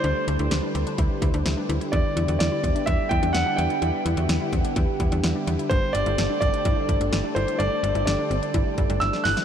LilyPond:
<<
  \new Staff \with { instrumentName = "Grand piano" } { \time 4/4 \key e \minor \tempo 4 = 127 c''8 r2. r8 | d''4 d''4 e''8 g''8 fis''8 g''8~ | g''8 r2. r8 | c''8 d''4 d''2 c''8 |
d''4 d''2 e'''8 fis'''8 | }
  \new Staff \with { instrumentName = "Synth arpeggio sound" } { \time 4/4 \key e \minor d'8 d'16 e'16 d'16 d'16 c'16 d'16 e'8 e'16 d'16 e'16 d'16 e'16 e'16 | e'8 e'16 fis'16 e'16 e'16 c'16 d'16 e'8 e'16 d'16 e'16 d'16 e'16 e'16 | e'8 e'16 fis'16 e'16 e'16 c'16 d'16 e'8 e'16 d'16 e'16 d'16 e'16 e'16 | d'8 d'16 e'16 d'16 d'16 c'16 d'16 e'8 e'16 d'16 e'16 d'16 e'16 e'16 |
d'8 d'16 e'16 d'16 d'16 c'16 d'16 e'8 e'16 d'16 e'16 d'16 e'16 e'16 | }
  \new Staff \with { instrumentName = "Analog synth pad" } { \time 4/4 \key e \minor << { <a g' b'>1 | <b e'>1~ | <b e'>1 | <a a'>1~ |
<a a'>1 | } \\ { <d g>1~ | <d g>1~ | <d g>1~ | <d g>1~ |
<d g>1 | } >> }
  \new Staff \with { instrumentName = "FM bass" } { \clef bass \time 4/4 \key e \minor d,16 r16 d,16 d,16 d,16 r16 d,16 r16 d,16 r16 d,16 d,16 d,16 r16 d,16 r16 | e,16 r16 e,16 e,16 e,16 r16 e,16 r16 e,16 r16 e,16 e,16 e,16 r16 e,16 r16 | e,16 r16 e,16 e,16 e,16 r16 e,16 r16 e,16 r16 e,16 e,16 e,16 r16 e,16 r16 | g,,16 r16 g,,16 g,,16 g,,16 r16 g,,16 r16 g,,16 r16 g,,16 g,,16 g,,16 r16 g,,16 r16 |
g,,16 r16 g,,16 g,,16 g,,16 r16 g,,16 r16 g,,16 r16 g,,16 g,,16 g,,16 r16 g,,16 r16 | }
  \new DrumStaff \with { instrumentName = "Drums" } \drummode { \time 4/4 hh8 hh16 hh16 <hh sn>8 hh16 hh16 <hh bd>8 <hh bd>16 hh16 <hh sn>8 hh16 hh16 | <hh bd>8 hh16 hh16 <hh sn>8 <hh bd>16 hh16 <hh bd>8 <hh bd>16 hh16 <hh sn>8 hh16 hh16 | hh8 hh16 hh16 <hh sn>8 <hh bd>16 hh16 <hh bd>8 <hh bd>16 hh16 <hh sn>8 hh16 hh16 | <hh bd>8 hh16 hh16 <hh sn>8 <hh bd>16 hh16 <hh bd>8 <hh bd>16 hh16 <hh sn>8 hh16 hh16 |
hh8 hh16 hh16 <hh sn>8 hh16 hh16 <hh bd>8 <hh bd>16 hh16 <hh sn>16 sn16 <hho sn>16 <hh sn>16 | }
>>